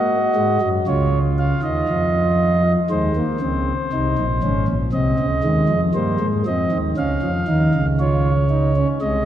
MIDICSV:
0, 0, Header, 1, 2, 480
1, 0, Start_track
1, 0, Key_signature, -5, "major"
1, 0, Tempo, 1018676
1, 1368, Time_signature, 4, 2, 24, 8
1, 4360, End_track
2, 0, Start_track
2, 0, Title_t, "Pipe organ"
2, 0, Program_c, 0, 19
2, 0, Note_on_c, 0, 58, 81
2, 0, Note_on_c, 0, 66, 66
2, 0, Note_on_c, 0, 75, 62
2, 78, Note_off_c, 0, 58, 0
2, 167, Note_on_c, 0, 44, 73
2, 169, Note_on_c, 0, 56, 81
2, 272, Note_off_c, 0, 44, 0
2, 273, Note_off_c, 0, 56, 0
2, 275, Note_off_c, 0, 66, 0
2, 290, Note_on_c, 0, 42, 71
2, 292, Note_on_c, 0, 54, 66
2, 325, Note_off_c, 0, 75, 0
2, 393, Note_off_c, 0, 42, 0
2, 394, Note_off_c, 0, 54, 0
2, 410, Note_on_c, 0, 49, 80
2, 410, Note_on_c, 0, 65, 66
2, 410, Note_on_c, 0, 73, 60
2, 412, Note_on_c, 0, 37, 78
2, 558, Note_off_c, 0, 73, 0
2, 652, Note_on_c, 0, 77, 66
2, 719, Note_off_c, 0, 49, 0
2, 720, Note_off_c, 0, 37, 0
2, 754, Note_off_c, 0, 77, 0
2, 766, Note_on_c, 0, 39, 71
2, 768, Note_on_c, 0, 51, 72
2, 768, Note_on_c, 0, 75, 56
2, 870, Note_off_c, 0, 39, 0
2, 871, Note_off_c, 0, 51, 0
2, 889, Note_on_c, 0, 53, 81
2, 890, Note_on_c, 0, 41, 89
2, 1234, Note_off_c, 0, 65, 0
2, 1284, Note_off_c, 0, 75, 0
2, 1302, Note_off_c, 0, 41, 0
2, 1302, Note_off_c, 0, 53, 0
2, 1366, Note_on_c, 0, 72, 82
2, 1367, Note_on_c, 0, 51, 78
2, 1367, Note_on_c, 0, 56, 77
2, 1368, Note_on_c, 0, 39, 69
2, 1471, Note_off_c, 0, 56, 0
2, 1488, Note_on_c, 0, 58, 78
2, 1516, Note_off_c, 0, 51, 0
2, 1517, Note_off_c, 0, 39, 0
2, 1592, Note_off_c, 0, 58, 0
2, 1604, Note_on_c, 0, 37, 68
2, 1605, Note_on_c, 0, 49, 65
2, 1607, Note_on_c, 0, 60, 78
2, 1754, Note_off_c, 0, 37, 0
2, 1755, Note_off_c, 0, 49, 0
2, 1756, Note_off_c, 0, 60, 0
2, 1851, Note_on_c, 0, 36, 74
2, 1851, Note_on_c, 0, 48, 64
2, 1851, Note_on_c, 0, 63, 78
2, 1953, Note_off_c, 0, 36, 0
2, 1953, Note_off_c, 0, 48, 0
2, 1971, Note_on_c, 0, 46, 67
2, 1974, Note_on_c, 0, 34, 72
2, 1999, Note_off_c, 0, 63, 0
2, 2073, Note_off_c, 0, 46, 0
2, 2074, Note_off_c, 0, 34, 0
2, 2088, Note_on_c, 0, 32, 68
2, 2088, Note_on_c, 0, 61, 80
2, 2089, Note_on_c, 0, 44, 56
2, 2191, Note_off_c, 0, 32, 0
2, 2192, Note_off_c, 0, 44, 0
2, 2192, Note_off_c, 0, 72, 0
2, 2206, Note_on_c, 0, 34, 63
2, 2207, Note_on_c, 0, 46, 60
2, 2236, Note_off_c, 0, 61, 0
2, 2310, Note_off_c, 0, 34, 0
2, 2311, Note_off_c, 0, 46, 0
2, 2322, Note_on_c, 0, 36, 66
2, 2322, Note_on_c, 0, 48, 67
2, 2323, Note_on_c, 0, 60, 73
2, 2323, Note_on_c, 0, 75, 65
2, 2428, Note_off_c, 0, 36, 0
2, 2428, Note_off_c, 0, 48, 0
2, 2448, Note_on_c, 0, 37, 69
2, 2449, Note_on_c, 0, 49, 63
2, 2473, Note_off_c, 0, 60, 0
2, 2550, Note_off_c, 0, 37, 0
2, 2551, Note_off_c, 0, 49, 0
2, 2561, Note_on_c, 0, 39, 73
2, 2562, Note_on_c, 0, 56, 83
2, 2564, Note_on_c, 0, 51, 73
2, 2667, Note_off_c, 0, 39, 0
2, 2668, Note_off_c, 0, 51, 0
2, 2679, Note_on_c, 0, 41, 60
2, 2682, Note_on_c, 0, 53, 54
2, 2712, Note_off_c, 0, 56, 0
2, 2737, Note_off_c, 0, 75, 0
2, 2785, Note_off_c, 0, 41, 0
2, 2787, Note_off_c, 0, 53, 0
2, 2801, Note_on_c, 0, 55, 75
2, 2801, Note_on_c, 0, 72, 70
2, 2802, Note_on_c, 0, 43, 74
2, 2802, Note_on_c, 0, 58, 83
2, 2906, Note_off_c, 0, 55, 0
2, 2907, Note_off_c, 0, 43, 0
2, 2920, Note_on_c, 0, 56, 65
2, 2923, Note_on_c, 0, 44, 60
2, 2951, Note_off_c, 0, 58, 0
2, 2951, Note_off_c, 0, 72, 0
2, 3026, Note_off_c, 0, 56, 0
2, 3027, Note_off_c, 0, 44, 0
2, 3044, Note_on_c, 0, 53, 71
2, 3045, Note_on_c, 0, 41, 72
2, 3046, Note_on_c, 0, 75, 64
2, 3047, Note_on_c, 0, 60, 90
2, 3148, Note_off_c, 0, 41, 0
2, 3148, Note_off_c, 0, 53, 0
2, 3165, Note_on_c, 0, 39, 65
2, 3166, Note_on_c, 0, 51, 68
2, 3194, Note_off_c, 0, 75, 0
2, 3195, Note_off_c, 0, 60, 0
2, 3268, Note_off_c, 0, 39, 0
2, 3268, Note_off_c, 0, 51, 0
2, 3284, Note_on_c, 0, 61, 89
2, 3286, Note_on_c, 0, 49, 75
2, 3287, Note_on_c, 0, 37, 79
2, 3287, Note_on_c, 0, 77, 77
2, 3389, Note_off_c, 0, 37, 0
2, 3389, Note_off_c, 0, 49, 0
2, 3404, Note_on_c, 0, 41, 64
2, 3404, Note_on_c, 0, 53, 71
2, 3434, Note_off_c, 0, 61, 0
2, 3508, Note_off_c, 0, 41, 0
2, 3508, Note_off_c, 0, 53, 0
2, 3524, Note_on_c, 0, 51, 66
2, 3524, Note_on_c, 0, 63, 86
2, 3525, Note_on_c, 0, 39, 67
2, 3629, Note_off_c, 0, 51, 0
2, 3630, Note_off_c, 0, 39, 0
2, 3650, Note_on_c, 0, 49, 71
2, 3651, Note_on_c, 0, 37, 66
2, 3674, Note_off_c, 0, 63, 0
2, 3701, Note_off_c, 0, 77, 0
2, 3767, Note_on_c, 0, 65, 84
2, 3768, Note_on_c, 0, 73, 73
2, 3917, Note_off_c, 0, 65, 0
2, 4005, Note_on_c, 0, 63, 75
2, 4110, Note_off_c, 0, 63, 0
2, 4129, Note_on_c, 0, 61, 76
2, 4167, Note_off_c, 0, 49, 0
2, 4168, Note_off_c, 0, 37, 0
2, 4183, Note_off_c, 0, 73, 0
2, 4233, Note_off_c, 0, 61, 0
2, 4247, Note_on_c, 0, 75, 65
2, 4249, Note_on_c, 0, 56, 69
2, 4250, Note_on_c, 0, 36, 63
2, 4250, Note_on_c, 0, 48, 72
2, 4360, Note_off_c, 0, 36, 0
2, 4360, Note_off_c, 0, 48, 0
2, 4360, Note_off_c, 0, 56, 0
2, 4360, Note_off_c, 0, 75, 0
2, 4360, End_track
0, 0, End_of_file